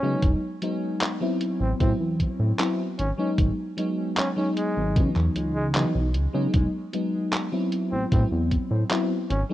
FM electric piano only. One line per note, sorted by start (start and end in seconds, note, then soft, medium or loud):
0.02 0.37 F#3 medium
0.02 0.37 G#3 medium
0.02 0.38 B3 medium
0.02 0.38 D#4 medium
0.62 1.16 F#3 medium
0.62 1.17 G#3 medium
0.62 1.17 B3 medium
0.62 1.17 D#4 medium
1.21 1.75 F#3 medium
1.21 1.76 B3 medium
1.21 1.76 C4 medium
1.21 1.76 E4 medium
1.80 2.55 F#3 medium
1.80 2.55 B3 medium
1.80 2.55 C4 medium
1.80 2.55 E4 medium
2.58 2.80 F#3 medium
2.58 2.81 B3 medium
2.58 2.81 C4 medium
2.58 2.81 E4 medium
3.18 3.52 F#3 medium
3.18 3.53 G#3 medium
3.18 3.53 B3 medium
3.18 3.53 D#4 medium
3.77 4.32 F#3 medium
3.77 4.32 G#3 medium
3.77 4.32 B3 medium
3.77 4.33 D#4 medium
4.36 4.91 F#3 medium
4.36 4.91 G#3 medium
4.36 4.91 B3 medium
4.36 4.92 D#4 medium
4.95 5.70 E3 medium
4.95 5.70 F#3 medium
4.95 5.70 B3 medium
4.95 5.71 D#4 medium
5.74 5.96 E3 medium
5.74 5.96 F#3 medium
5.74 5.97 B3 medium
5.74 5.97 D#4 medium
6.33 6.68 F#3 medium
6.33 6.68 G#3 medium
6.33 6.69 B3 medium
6.33 6.69 D#4 medium
6.93 7.48 F#3 medium
6.93 7.48 G#3 medium
6.93 7.48 B3 medium
6.93 7.49 D#4 medium
7.52 8.07 F#3 medium
7.52 8.07 B3 medium
7.52 8.07 C4 medium
7.52 8.08 E4 medium
8.11 8.86 F#3 medium
8.11 8.86 B3 medium
8.11 8.86 C4 medium
8.11 8.87 E4 medium
8.90 9.12 F#3 medium
8.90 9.12 B3 medium
8.90 9.12 C4 medium
8.90 9.13 E4 medium
9.49 9.54 F#3 medium
9.49 9.54 G#3 medium
9.49 9.54 B3 medium